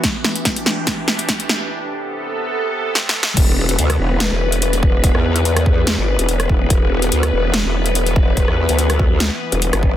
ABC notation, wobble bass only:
X:1
M:4/4
L:1/16
Q:"Swing 16ths" 1/4=144
K:Em
V:1 name="Wobble bass" clef=bass
z16 | z16 | E,,,4 D,,2 E,,,3 E,,,6- E,,,- | E,,, E,,8 G,,,2 E,,,3 E,,,2 |
E,,,4 D,,2 E,,,3 E,,,6- E,,,- | E,,, E,,2 D,,4 D,,2 z2 E,,,2 G,,,3 |]